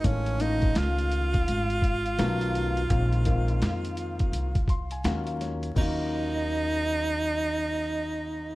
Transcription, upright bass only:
X:1
M:4/4
L:1/8
Q:"Swing 16ths" 1/4=84
K:Ebdor
V:1 name="Upright bass" clef=bass
=A,,,2 ^C,,2 ^G,,,2 =B,,,2 | B,,,2 F,,2 C,,2 E,,2 | E,,8 |]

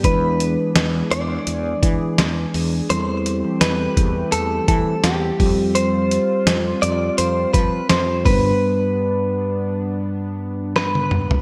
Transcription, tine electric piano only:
X:1
M:4/4
L:1/8
Q:"Swing 16ths" 1/4=84
K:Am
V:1 name="Tine electric piano"
[^G,DEB]8 | [G,CEA]6- [G,CEA] [G,CFG]- | [G,CFG]6- [G,CFG] [G,B,D_B=B]- | [G,B,D_B=B]6- [G,B,D_B=B] z |]
V:2 name="Tine electric piano" clef=bass
E,3 z4 z | E,3 z4 z | z6 z G,,- | G,,2 z6 |]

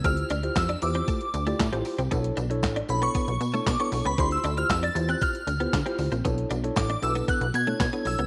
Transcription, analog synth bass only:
X:1
M:4/4
L:1/16
Q:1/4=116
K:Dlyd
V:1 name="Analog synth bass" clef=bass
D,,2 D,,2 =F,,2 E,,2 z2 D,,2 A,, A,,, z =C,, | B,,,2 B,,,2 A,,,2 B,,,2 z B,,, B,,2 B,, z B,,, C,, | D,,2 D,,2 =F,,2 E,,2 z2 D,,2 D, z D,, ^A,,, | B,,,2 B,,,2 A,,,2 B,,,2 z B,,, B,,2 B,, z B,,, C,, |]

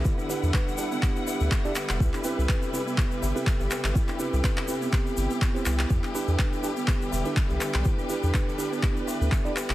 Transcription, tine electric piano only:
X:1
M:4/4
L:1/16
Q:"Swing 16ths" 1/4=123
K:Em
V:1 name="Tine electric piano"
z2 [DEGB]4 [DEGB]6- [DEGB] [DEGd] z2 | z2 [CEGB]4 [CEGB] z4 [CEGB] z4 | z2 [CEGB]4 [CEGB]6- [CEGB] [CEGc] z2 | z2 [DEGB]4 [DEGB] z4 [DEGB] z4 |
z2 [DEGB]4 [DEGB]6- [DEGB] [DEGd] z2 |]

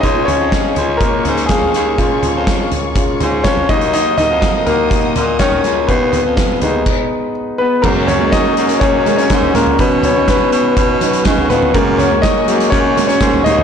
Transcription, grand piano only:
X:1
M:4/4
L:1/16
Q:1/4=123
K:F#
V:1 name="Grand piano"
[Dd]2 [Cc]6 [A,A]4 [G,G]2 [G,G]2- | [G,G]8- [G,G]2 z2 [Cc]2 d2 | [Dd]2 [Dd]4 [A,A]6 [Cc]4 | [B,B]12 z2 [B,B]2 |
A2 [Cc]2 [Dd]4 [Cc]3 [Cc]3 [A,A]2 | B2 [Cc]2 [B,B]8 z2 [B,B]2 | [A,A]2 [Cc]2 [Dd]4 [Cc]3 [Cc]3 [Dd]2 |]
V:2 name="Grand piano"
[G,CE]6 z8 z2 | [G,CE]2 z6 [G,CE]2 z4 [F,A,D]2- | [F,A,D]4 z12 | z6 [G,B,D]8- [G,B,D]2 |
[F,G,A,]8 [F,G,A,]2 z6 | [D,B,C]2 z12 z2 | z6 [F,G,A,]2 z8 |]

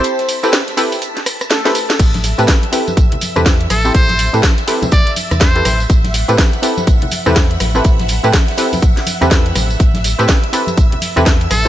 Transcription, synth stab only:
X:1
M:4/4
L:1/16
Q:"Swing 16ths" 1/4=123
K:Ador
V:1 name="Synth stab"
[CEGAc]3 [CEGAB] z2 [CEGAB] z6 [CEGAB] z2 | z3 [CEGAB] z2 [CEGAB] z4 [CEGAB] z3 [CEGAc]- | [CEGAc]3 [CEGAB] z2 [CEGAB] z6 [CEGAB] z2 | z3 [CEGAB] z2 [CEGAB] z4 [CEGAB] z3 [CEGAB]- |
[CEGAB]3 [CEGAB] z2 [CEGAB] z4 [CEGAB] [CEGAB] z3 | z3 [CEGAB] z2 [CEGAB] z4 [CEGAB] z3 C |]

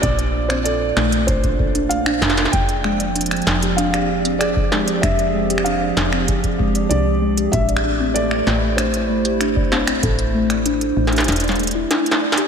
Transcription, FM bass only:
X:1
M:4/4
L:1/8
Q:1/4=96
K:F
V:1 name="FM bass" clef=bass
B,,,3 B,,,4 F,,, | F,,,3 F,,,4- F,,, | F,,,3 F,,,3 C,,2 | A,,,3 A,,,4- A,,, |
A,,,3 A,,, E,,,2 z2 |]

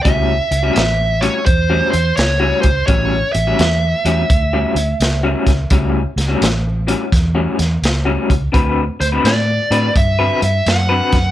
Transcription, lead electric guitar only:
X:1
M:4/4
L:1/8
Q:"Swing" 1/4=85
K:Amix
V:1 name="Lead electric guitar"
e2 e c =c c ^c =c | c e6- e- | e z6 z | z =c d2 e e f2 |]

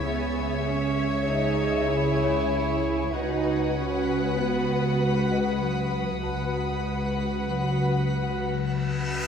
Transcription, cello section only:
X:1
M:5/4
L:1/8
Q:1/4=97
K:Bmix
V:1 name="Cello section"
B,2 C2 D2 E4 | D2 C2 B,2 G,2 F,2 | G,4 F,4 z2 |]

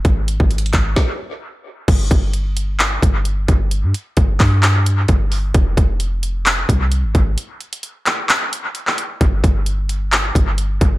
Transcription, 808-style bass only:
X:1
M:4/4
L:1/16
Q:1/4=131
K:Fdor
V:1 name="808-style bass" clef=bass
A,,,3 A,,,3 A,,,2 z8 | G,,,2 G,,,8 G,,,4 G,,,2- | G,,, G,, z2 G,,,2 G,,6 G,,,4 | F,,,2 F,,,8 C,,3 A,,, A,,,2 |
z16 | G,,,2 G,,,8 G,,,4 G,,,2 |]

